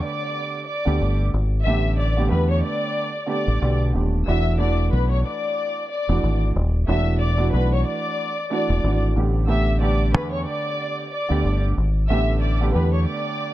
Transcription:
Already playing: D3 A3 B3 G4
0.03 D5 D6
0.68 D5 D6
0.85 D2 D3 A3 B3 G4
1.01 G1
1.34 G#1
1.66 A1 D3 A3 B3 G4 E5 E6
1.98 D5 D6
2.17 D3 A3 B3 G4
2.29 E2 D3 A3 B3 G4 B4 B5
2.50 C#5 C#6
2.63 D5 D6
3.26 D3 A3 B3 G4 D5 D6
3.48 A1
3.62 B1 D3 A3 B3 G4
3.93 D#1 D3 A3 B3 G4
4.26 E1 E3 A3 D4 F#4 E5 E6
4.58 E3 A3 D4 F#4 D5 D6
4.92 B1 B4 B5
5.11 C#5 C#6
5.26 D5 D6
5.91 D5 D6
6.09 E1 E3 A3 D4 F#4
6.23 G#1
6.56 D#1
6.87 E1 E3 A3 D4 F#4 E5 E6
7.20 D5 D6
7.37 E3 A3 D4 F#4
7.52 B1 E3 A3 D4 F#4 B4 B5
7.73 C#5 C#6
7.86 D5 D6
8.50 E3 A3 D4 F#4 D5 D6
8.70 E1
8.84 G#1 E3 A3 D4 F#4
9.16 A1 D3 A3 B3 G4
9.47 D3 A3 B3 G4 E5 E6
9.81 D3 A3 B3 G4 D5 D6
10.14 E2 B4 B5
10.32 C#5 C#6
10.47 D5 D6
11.12 D5 D6
11.29 D2 D3 A3 B3 G4
11.45 G1
11.77 G#1
12.09 A1 D3 A3 B3 G4 E5 E6
12.42 D5 D6
12.61 D3 A3 B3 G4
12.72 E2 D3 A3 B3 G4 B4 B5
12.94 C#5 C#6
13.07 D5 D6

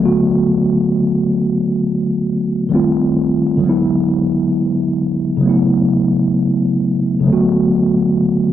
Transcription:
Already playing: D3 F#3
0.00 A3 B3
0.05 F#4
2.69 D#3 G3 A3
2.74 C4 F4
3.57 D3 F#3
3.63 G#3 B3
3.69 E4
5.37 C#3 F#3
5.43 A3 B3
5.49 E4
7.20 C#3 F#3
7.27 D3 A3 B3
7.33 F#4

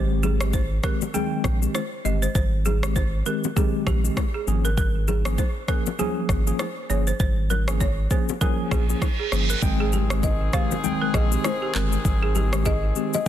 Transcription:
Already playing: G#1 D#3 G#3 C4 G4
0.23 G#4, low bongo, low conga, shaker
0.41 D#3 G#3 C4 G4, cross-stick, shaker
0.53 C5, kick, high bongo, shaker
0.83 D#3 G#3 C4 G4 A#4, kick, cross-stick, shaker
1.02 low bongo, shaker
1.14 D#3 G#3 C4 G#4 G5, low conga, shaker
1.44 A#1, kick, cross-stick, low bongo, shaker
1.62 D#3 G#3 C4 G4, shaker
1.75 C5, cross-stick, high bongo, shaker
2.05 G1 D#3 G#3 C4 G4 D#5, shaker
2.22 C5, shaker
2.35 G#1 C5, kick, low conga, shaker
2.65 G#4, low bongo, low conga, shaker
2.83 D#3 G#3 C4 G4, cross-stick, shaker
2.96 C5, kick, high bongo, shaker
3.26 D#3 G#3 C4 G4 A#4, shaker
3.44 low bongo, shaker
3.56 D#3 G#3 C4 G4 G#4, kick, low conga, shaker
3.87 A#1 G4, kick, cross-stick, low bongo, shaker
4.04 D#3 G#3 C4 G4, shaker
4.17 kick, cross-stick, high bongo, shaker
4.34 G#4
4.47 G#1 F3 A#3 C#4 G#4, shaker
4.65 A#4, shaker
4.77 A#4, kick, low conga, shaker
5.08 G#4, low bongo, low conga, shaker
5.25 F3 A#3 C#4 G#4, cross-stick, shaker
5.38 C5, kick, high bongo, shaker
5.68 F3 A#3 C#4 G#4 A#4, kick, cross-stick, shaker
5.86 low bongo, shaker
5.99 F3 A#3 C#4 G#4, low conga, shaker
6.29 G#1, kick, cross-stick, low bongo, shaker
6.47 F3 A#3 C#4 G#4, shaker
6.59 C5, cross-stick, high bongo, shaker
6.90 G1 F3 A#3 C#4 G#4 C#5, shaker
7.07 C5, shaker
7.20 G#1 C5, kick, low conga, shaker
7.50 A#4, low bongo, low conga, shaker
7.68 F3 A#3 C#4 G#4, cross-stick, shaker
7.80 C#5, kick, high bongo, shaker
8.11 F3 A#3 C#4 G#4 C5, kick, shaker
8.29 low bongo, shaker
8.41 F3 A#3 C#4 G#4 A#4, kick, reverse cymbal, low conga, shaker
8.71 A#1 G#4, kick, cross-stick, low bongo, shaker
8.89 F3 A#3 C#4 G#4, shaker
9.02 kick, cross-stick, high bongo, shaker
9.19 G#4
9.32 G1 F3 A#3 C#4 G#4, cross-stick, shaker
9.50 A#4, shaker
9.62 G#1 D#3 G#3 C4 G#4 G5, kick, impact, low conga, shaker
9.80 G#4
9.93 G4, low conga, shaker
10.10 D#3 G#3 C4 G4, cross-stick, shaker
10.23 D#5, kick, high bongo, shaker
10.53 D#3 G#3 C4 G4 C5 F5, kick, cross-stick, shaker
10.71 low bongo, shaker
10.83 D#3 G#3 C4 G5, low conga, shaker
11.02 A#4
11.14 A#1 G#4 D#5, kick, cross-stick, low bongo, shaker
11.31 D#3 G#3 C4 G4, shaker
11.44 C5, cross-stick, high bongo, shaker
11.62 G4
11.74 G1 D#3 G#3 C4 G4 A#4, clap, shaker
11.92 shaker
12.05 G#1, kick, low conga, shaker
12.23 G#4
12.35 G4, low conga, shaker
12.53 D#3 G#3 C4 G4, cross-stick, shaker
12.65 G#4 D#5, kick, high bongo, shaker
12.96 D#3 G#3 C4 G4, shaker
13.13 D#5, low bongo, shaker

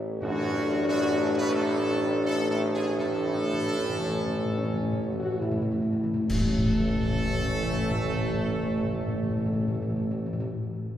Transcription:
Already playing: A1
0.22 A1 F#2 A2 A3 D4 F#4
0.87 F#2 F#4
1.38 B2 B4
1.54 A2 A4
2.25 A2 A4
2.49 A2 A4
2.73 G#2 G#4
2.98 A2 A4
3.09 A2
3.26 A2
3.35 A2
3.44 A2
3.53 A2
3.62 A2
3.72 A2
3.77 A2 C#4
3.89 A2
3.99 A2
4.08 A2
4.18 A2
4.27 A2
4.37 A2
4.45 A2
4.55 A2 C#4
4.64 A2
4.73 A2
4.83 A2
4.93 A2
5.03 A2
5.12 A2
5.19 A2 F#4
5.32 A2
5.39 A2 E4
5.51 A2
5.62 A2
5.72 A2
5.82 A2
5.93 A2
6.03 A2
6.14 A2
6.26 A1 A2 A3 C#4 A4
6.30 concert bass drum, crash
6.36 A2
6.43 A2
6.51 A2
6.58 A2
6.66 A2
6.72 A2
6.80 A2
6.88 A2
6.95 A2
7.02 A2
7.10 A2
7.17 A2
7.25 A2
7.33 A2
7.40 A2
7.47 A2
7.54 A2
7.62 A2
7.70 A2
7.76 A2
7.84 A2
7.91 A2
7.98 A2
8.05 A2
8.13 A2
8.20 A2
8.27 A2
8.34 A2
8.41 A2
8.48 A2
8.56 A2
8.63 A2
8.71 A2
8.78 A2
8.85 A2
8.93 A2
9.01 A2
9.08 A2
9.16 A2
9.23 A2
9.30 A2
9.38 A2
9.46 A2
9.53 A2
9.60 A2
9.68 A2
9.74 A2
9.82 A2
9.89 A2
9.96 A2
10.04 A2
10.11 A2
10.19 A2
10.26 A2
10.33 A2
10.40 A2

